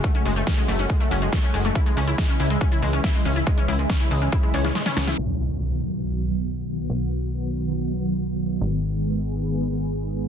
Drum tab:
HH |xxoxxxoxxxoxxxox|xxoxxxoxxxoxxxox|xxoxxxoxxxoxxxox|----------------|
SD |----o-------o---|----o-------o---|----o------ooooo|----------------|
BD |o---o---o---o---|o---o---o---o---|o---o---o-------|----------------|

HH |----------------|----------------|
SD |----------------|----------------|
BD |----------------|----------------|